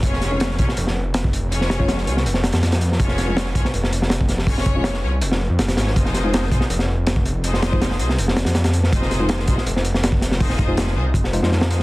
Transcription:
<<
  \new Staff \with { instrumentName = "String section" } { \time 4/4 \key f \minor \tempo 4 = 162 <des' f' aes' des''>4. <des' f' aes' des''>8 r2 | <des' f' aes' des''>4. <des' f' aes' des''>8 r2 | <des' f' aes' des''>4. <des' f' aes' des''>8 r2 | <des' f' aes' des''>4. <des' f' aes' des''>8 r4. <des' f' aes' des''>8 |
<ees' f' aes' c''>4. <ees' f' aes' c''>8 r2 | <ees' f' aes' c''>4. <ees' f' aes' c''>8 r2 | <ees' f' aes' c''>4. <ees' f' aes' c''>8 r2 | <ees' f' aes' c''>4. <ees' f' aes' c''>8 r4. <ees' f' aes' c''>8 | }
  \new Staff \with { instrumentName = "Synth stab" } { \time 4/4 \key f \minor r8. <aes des' f' des''>16 r2. | r8. <aes des' f' des''>16 r2. | r8. <aes des' f' des''>16 r2. | r8. <aes des' f' des''>16 r2. |
r8. <aes ees' f' c''>16 r2. | r8. <aes ees' f' c''>16 r2. | r8. <aes ees' f' c''>16 r2. | r8. <aes ees' f' c''>16 r4. <aes ees' f' c''>16 <aes ees' f' c''>16 r4 | }
  \new Staff \with { instrumentName = "Detuned saw bass" } { \clef bass \time 4/4 \key f \minor f,,4. c,16 r16 f,,2 | f,,4. c,8 f,,8. f,4~ f,16 | f,,4. c,16 r16 f,,2 | f,,4. c,8 f,,8. f,16 f,,8 aes,,8 |
f,,4. c,16 r16 f,,2 | f,,4. c,8 f,,8. f,4~ f,16 | f,,4. c,16 r16 f,,2 | f,,4. c,8 f,,8. f,4~ f,16 | }
  \new DrumStaff \with { instrumentName = "Drums" } \drummode { \time 4/4 <hh bd>16 sn16 <hh sn>8 <hh sn>16 sn16 <hh bd>16 sn16 hh16 sn8. <hh sn>16 bd16 hh8 | hh16 sn16 <hh sn>16 bd16 <hh sn>16 sn16 hh16 sn16 hh16 sn16 <hh sn>16 <hh sn>16 <hh sn>16 <hh sn>16 hh16 sn16 | <hh bd>16 sn16 <hh sn>8 <hh sn>16 sn16 <hh bd>16 sn16 hh16 sn16 hh16 sn16 <hh sn>16 bd16 <hh sn>16 sn16 | <hho bd>16 sn16 <hh bd>8 <hh sn>16 sn8. hh16 sn8. <hh sn>16 <hh sn>16 <hh sn>16 sn16 |
<hh bd>16 sn16 <hh sn>8 <hh sn>16 sn16 <hh bd>16 sn16 hh16 sn8. <hh sn>16 bd16 hh8 | hh16 sn16 <hh sn>16 bd16 <hh sn>16 sn16 hh16 sn16 hh16 sn16 <hh sn>16 <hh sn>16 <hh sn>16 <hh sn>16 hh16 sn16 | <hh bd>16 sn16 <hh sn>8 <hh sn>16 sn16 <hh bd>16 sn16 hh16 sn16 hh16 sn16 <hh sn>16 bd16 <hh sn>16 sn16 | <hho bd>16 sn16 <hh bd>8 <hh sn>16 sn8. <hh bd>16 sn16 hh16 sn16 sn16 sn16 hh16 sn16 | }
>>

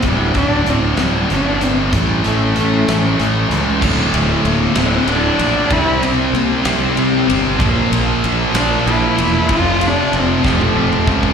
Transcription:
<<
  \new Staff \with { instrumentName = "Cello" } { \time 6/8 \key d \minor \tempo 4. = 63 g8 d'8 c'8 g8 d'8 c'8 | g8 a2 r8 | a4 bes8 c'8 d'4 | e'8 c'8 bes8 c'4 r8 |
bes4 r8 d'8 e'4 | f'8 d'8 c'8 a4 r8 | }
  \new Staff \with { instrumentName = "Distorted electric guitar" } { \clef bass \time 6/8 \key d \minor <d, a, d>8 <d, a, d>8 <d, a, d>8 <d, a, d>8 <d, a, d>8 <d, a, d>8 | <a, e a>8 <a, e a>8 <a, e a>8 <a, e a>8 <a, e a>8 <a, e a>8 | <d, a, d>4. <d, a, d>8 <d, a, d>8 <d, a, d>8 | <c g c'>4. <c g c'>8 <c g c'>8 <c g c'>8 |
<bes, f bes>4. <bes, f bes>8 <bes, f bes>8 <bes, f bes>8 | <f, c f>4. <f, c f>8 <f, c f>8 <f, c f>8 | }
  \new Staff \with { instrumentName = "Distorted electric guitar" } { \clef bass \time 6/8 \key d \minor <d, a, d>8 <d, a, d>8 <d, a, d>8 <d, a, d>8 <d, a, d>8 <d, a, d>8 | <a, e a>8 <a, e a>8 <a, e a>8 <a, e a>8 <a, e a>8 <a, e a>8 | <d, a, d>4. <d, a, d>8 <d, a, d>8 <d, a, d>8 | <c g c'>4. <c g c'>8 <c g c'>8 <c g c'>8 |
<bes, f bes>4. <bes, f bes>8 <bes, f bes>8 <bes, f bes>8 | <f, c f>4. <f, c f>8 <f, c f>8 <f, c f>8 | }
  \new Staff \with { instrumentName = "Distorted electric guitar" } { \clef bass \time 6/8 \key d \minor r2. | r2. | <d, a, d>4. <d, a, d>4. | <c g c'>4. <c g c'>4. |
<bes, f bes>4. <bes, f bes>4. | <f, c f>4. <f, c f>4. | }
  \new Staff \with { instrumentName = "Fingered electric bass" } { \clef bass \time 6/8 \key d \minor d,,8 d,,8 d,,8 d,,8 g,,4 | a,,8 a,,8 a,,8 a,,8 a,,8 cis,8 | d,,8 d,,8 d,,8 d,,8 d,,8 bes,,8 | c,4 c,8 c,8 c,8 g,,8 |
bes,,8 bes,,8 bes,,8 bes,,8 bes,,8 e,,8 | f,,4 f,,8 f,,8 f,,8 cis,8 | }
  \new DrumStaff \with { instrumentName = "Drums" } \drummode { \time 6/8 <hh bd>8 <hh bd>8 hh8 <hh sn>8 hh8 hh8 | <hh bd>8 hh8 hh8 <hh sn>8 hh8 hh8 | <cymc bd>8 cymr8 cymr8 <cymr sn>8 cymr8 cymr8 | <bd cymr>8 cymr8 cymr8 <cymr sn>8 cymr8 cymr8 |
<bd cymr>8 cymr8 cymr8 <cymr sn>8 cymr8 cymr8 | <bd cymr>8 cymr8 cymr8 <bd sn>16 tommh8 toml16 bd16 bd16 | }
>>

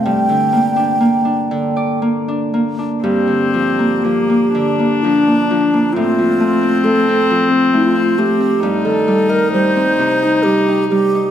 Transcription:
<<
  \new Staff \with { instrumentName = "Flute" } { \time 3/4 \key g \minor \tempo 4 = 65 g''2 r4 | g'2 d'4 | f'4 a'8. r16 f'8 g'8~ | g'16 a'8 bes'16 c''4 g'8 g'8 | }
  \new Staff \with { instrumentName = "Viola" } { \time 3/4 \key g \minor r2. | c'4 bes8 d'4. | c'2. | ees'2. | }
  \new Staff \with { instrumentName = "Harp" } { \time 3/4 \key g \minor g,16 d16 bes16 d'16 bes16 d'16 d16 d''16 bes16 d'16 bes16 d'16 | g,16 d16 f16 bes16 f16 bes16 d16 bes16 f16 bes16 f16 bes16 | a,16 f16 a16 c'16 a16 c'16 f16 c'16 a16 c'16 a16 c'16 | g,16 ees16 g16 ees''16 g16 c'16 c16 ees'16 g16 ees'16 g16 ees'16 | }
>>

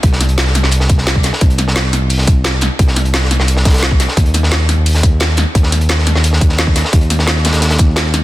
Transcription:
<<
  \new Staff \with { instrumentName = "Analog synth bass" } { \clef bass \time 4/4 \key ees \major \tempo 4 = 174 c,4.~ c,16 c,2 r16 | c,4.~ c,16 c,2 r16 | c,4.~ c,16 c,2 r16 | ees,4.~ ees,16 ees,2 r16 |
ees,4.~ ees,16 ees,2 r16 | ees,4.~ ees,16 ees,2 r16 | }
  \new DrumStaff \with { instrumentName = "Drums" } \drummode { \time 4/4 <hh bd>16 sn16 <hh sn>16 hh16 <hh sn>16 sn16 <hh sn>16 sn16 hh16 sn16 <hh bd>16 sn16 <hh sn>16 bd16 <hh sn>16 sn16 | <hh bd>16 hh16 <hh sn>16 sn16 <hh sn>8 <hh sn>8 <hh hho>16 sn16 <hh bd>8 <hh sn>8 <hh sn>8 | <hh bd>16 sn16 <hh sn>16 hh16 <hh sn>16 sn16 <hh sn>16 sn16 hh16 sn16 <hh bd sn>32 <hh sn>32 <hh sn>32 <hh sn>32 <hh sn>16 bd16 <hh sn>16 sn16 | <hh bd>16 hh16 <hh sn>16 sn16 <hh sn>8 <hh sn>8 <hh hho>16 sn16 <hh bd>8 <hh sn>8 <hh sn>8 |
<hh bd>16 sn16 <hh sn>16 hh16 <hh sn>16 sn16 <hh sn>16 sn16 hh16 sn16 <hh bd>16 sn16 <hh sn>16 bd16 <hh sn>16 sn16 | <hh bd>16 hh16 <hh sn>16 sn16 <hh sn>8 <hh sn>16 <hh sn>16 <hh sn>16 <hh sn>16 <hh bd>8 <hh sn>8 <hh sn>8 | }
>>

